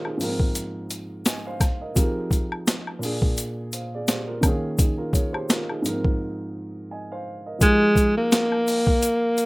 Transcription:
Already playing: D#3 A#3 C#4 D#4 F4 G4 G#4 A#4 C5 C#5
0.05 D#4 G#4, high woodblock
0.17 G#2 F3, open hi-hat, shaker
0.21 A#3 A#4
0.28 C4
0.40 kick
0.55 closed hi-hat, shaker
0.90 closed hi-hat, shaker
1.26 D#5 G#5, snare, closed hi-hat, shaker
1.47 C5 F5
1.60 kick, snare, closed hi-hat, high woodblock, shaker
1.81 A#4 D#5
1.95 F3 C4 D#4 G4 G#4 A#4, kick, closed hi-hat, shaker
2.31 kick, closed hi-hat, shaker
2.52 high woodblock
2.67 snare, closed hi-hat, shaker
2.87 high woodblock
2.99 A#2 A#3, shaker
3.03 D4 G#4, open hi-hat
3.22 kick
3.37 closed hi-hat, shaker
3.72 C5 F5, closed hi-hat, shaker
3.95 G#4 D5
4.08 G4 C5, snare, closed hi-hat, shaker
4.27 F4 A#4
4.41 D#3 A#3, kick, closed hi-hat, high woodblock, shaker
4.45 C#4 G#4
4.78 D#4 G#4, kick, closed hi-hat, shaker
4.97 F4 A#4
5.13 G#4 C#5, kick, closed hi-hat, shaker
5.33 G4 C5, high woodblock
5.49 F4 A#4, snare, closed hi-hat, shaker
5.69 D#4 G#4, high woodblock
5.82 G#2 F3, closed hi-hat, shaker
5.86 A#3 A#4
5.93 C4
6.05 kick
6.91 D#5 G#5
7.12 C5 F5
7.46 A#4 D#5
7.58 F3 G#3 D#4, kick, closed hi-hat, shaker
7.63 G4 G#4
7.96 kick, closed hi-hat, shaker
8.17 A#3
8.32 snare, closed hi-hat, shaker
8.52 high woodblock
8.67 open hi-hat, shaker
8.87 kick
9.02 closed hi-hat, shaker
9.37 closed hi-hat, shaker

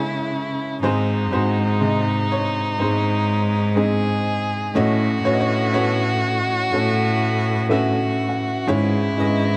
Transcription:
Already playing: C#2 C#3 G#3 C#4 E4 G#4 A4 B4 C#5
0.82 G#1 G#2 G#3 C4 D#4 G#4 C5
0.86 D#4
1.31 G#2 G#3 C4 D#4 F#4 G#4 C5
1.80 C3 G#3 D#4 D#5
2.32 C#5
2.79 G#2 G#3 C4 D#4 C5
2.83 D#4 G#4
3.75 G#3 C4 D#4 G#4 D#5
4.75 A1 A2 A3 C#4 F#4 A4 C#5 D#5
5.24 A2 A3 C#4 F#4 B4 C#5
5.33 D#5
5.40 C#5
5.74 A3 C#4 F#4 A4 B4 C#5
6.72 A2 A3 C#4 F#4 A4 C#5
7.69 A3 C#4 F#4 B4 E5
7.99 E5
8.29 F#5
8.68 G#1 G#2 G#3 C#4 E4 G#4 C#5
9.17 G#2 G#3 C#4 E4 B4 D#5
9.22 G#4

